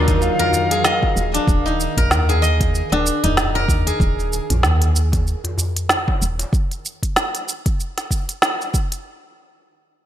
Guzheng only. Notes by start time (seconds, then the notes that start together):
Already playing: D4 G#4 A#4
0.08 D#4
0.39 A#4
0.71 G#4
0.84 D#5
1.34 D4
1.66 D#4
1.98 A#4
2.29 G#4
2.42 D#5
2.92 D4
3.23 D#4
3.55 A#4
3.87 G#4